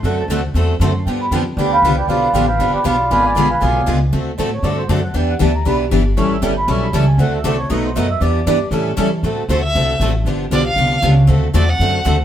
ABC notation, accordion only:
X:1
M:4/4
L:1/8
Q:"Swing" 1/4=235
K:Dmix
V:1 name="Accordion"
f a f z3 c'2 | g b g z [GBdg] [B=fgb]2 [GBdg] | [=FBd=f]2 [GBdg] [Bfgb]2 [GBdg] [FBdf]2 | [B^e^gb] [dgbd']2 [Begb] [^Gdeg]3 z |
z3 ^c d =c d f | g f a _b =b z3 | ^c' e g b c' b a ^g | f e d ^c ^d =c d e |
d4 z4 | z8 | z8 | z8 |]